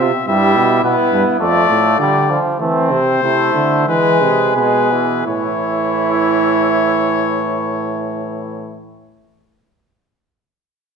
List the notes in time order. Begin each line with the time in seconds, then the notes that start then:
Already playing: C4 E5
0.00 C3 F4
0.27 G2 G3 E4 E5
0.56 B2
0.83 B2 B3 E4 B4
1.12 G2
1.40 F2 A3 F4 D5
1.69 A2
1.99 D3 G3 D5
2.30 F3
2.60 E3 A3 C4 C5
2.92 C3
3.23 C3 A3 E4
3.55 D3
3.88 E3 G#3 G#4 B4
4.22 C3
4.55 B2 G#3 B4
4.92 E3
5.26 A2 E3 E4 C#5